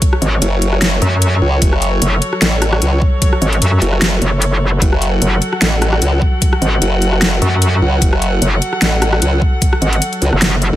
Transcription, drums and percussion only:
0.02 kick, closed hi-hat
0.13 cross-stick
0.22 closed hi-hat
0.42 closed hi-hat
0.62 closed hi-hat
0.73 cross-stick
0.82 snare, closed hi-hat
1.02 closed hi-hat
1.22 closed hi-hat
1.62 kick, closed hi-hat
1.73 cross-stick
1.82 closed hi-hat
2.02 closed hi-hat
2.22 closed hi-hat
2.33 cross-stick
2.42 snare, closed hi-hat
2.62 cross-stick, closed hi-hat
2.73 cross-stick
2.82 closed hi-hat
3.02 kick
3.22 kick, closed hi-hat
3.33 cross-stick
3.42 closed hi-hat
3.53 closed hi-hat
3.62 closed hi-hat
3.82 closed hi-hat
3.93 cross-stick
4.02 snare, closed hi-hat
4.22 closed hi-hat
4.42 closed hi-hat
4.82 kick, closed hi-hat
4.93 cross-stick
5.02 closed hi-hat
5.22 closed hi-hat
5.42 closed hi-hat
5.53 cross-stick
5.62 snare, closed hi-hat
5.82 cross-stick, closed hi-hat
5.93 cross-stick
6.02 closed hi-hat
6.22 kick
6.42 kick, closed hi-hat
6.53 cross-stick
6.62 closed hi-hat
6.82 closed hi-hat
7.02 closed hi-hat
7.13 cross-stick
7.22 snare, closed hi-hat
7.42 closed hi-hat
7.62 closed hi-hat
8.02 kick, closed hi-hat
8.13 cross-stick
8.22 closed hi-hat
8.42 closed hi-hat
8.62 closed hi-hat
8.73 cross-stick
8.82 snare, closed hi-hat
9.02 cross-stick, closed hi-hat
9.13 cross-stick
9.22 closed hi-hat
9.42 kick
9.62 kick, closed hi-hat
9.73 cross-stick
9.82 closed hi-hat
9.93 closed hi-hat
10.02 closed hi-hat
10.13 closed hi-hat
10.22 closed hi-hat
10.33 cross-stick
10.42 snare, closed hi-hat
10.62 closed hi-hat

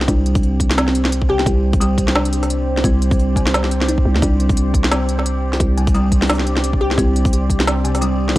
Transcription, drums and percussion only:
0.01 snare
0.08 kick, closed hi-hat
0.26 closed hi-hat
0.35 kick, open hi-hat
0.43 open hi-hat
0.60 kick, closed hi-hat
0.71 snare, open hi-hat
0.78 snare, closed hi-hat
0.88 snare
0.95 closed hi-hat
1.05 snare
1.12 closed hi-hat
1.22 kick
1.39 snare
1.46 kick, closed hi-hat
1.73 kick, open hi-hat
1.81 closed hi-hat
1.98 kick, closed hi-hat
2.08 snare
2.16 snare
2.25 closed hi-hat
2.33 closed hi-hat
2.43 snare, open hi-hat
2.50 closed hi-hat
2.77 snare
2.84 kick, closed hi-hat
3.02 closed hi-hat
3.11 kick, open hi-hat
3.19 open hi-hat
3.36 kick, closed hi-hat
3.47 snare, open hi-hat
3.54 snare, closed hi-hat
3.64 snare
3.71 closed hi-hat
3.81 snare
3.88 closed hi-hat
3.98 kick
4.16 snare
4.22 kick, closed hi-hat
4.40 closed hi-hat
4.49 kick, open hi-hat
4.57 closed hi-hat
4.74 kick, closed hi-hat
4.84 snare
4.91 snare, closed hi-hat
5.09 closed hi-hat
5.19 snare
5.26 closed hi-hat
5.53 snare
5.60 kick, closed hi-hat
5.78 closed hi-hat
5.87 kick, open hi-hat
5.95 open hi-hat
6.12 kick, closed hi-hat
6.22 snare, open hi-hat
6.24 open hi-hat
6.27 snare, closed hi-hat, open hi-hat
6.29 open hi-hat
6.33 open hi-hat
6.35 open hi-hat
6.39 snare
6.47 closed hi-hat
6.57 snare
6.64 closed hi-hat
6.73 kick
6.91 snare
6.98 kick, closed hi-hat
7.16 closed hi-hat
7.25 kick, open hi-hat
7.33 closed hi-hat
7.50 kick, closed hi-hat
7.60 snare
7.68 snare, closed hi-hat
7.85 closed hi-hat
7.95 snare, open hi-hat
8.02 closed hi-hat
8.29 snare

